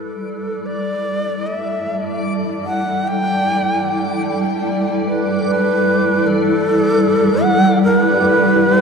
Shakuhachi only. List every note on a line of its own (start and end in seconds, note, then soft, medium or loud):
0.00 0.67 A4 medium
0.66 1.48 D5 loud
1.47 2.27 E5 loud
2.65 3.09 F#5 medium
3.08 4.27 G5 loud
5.06 5.44 B4 medium
5.45 6.29 B4 medium
6.27 7.45 A4 loud
7.43 7.83 F#5 loud
7.84 7.98 A#4 loud
7.98 8.81 B4 loud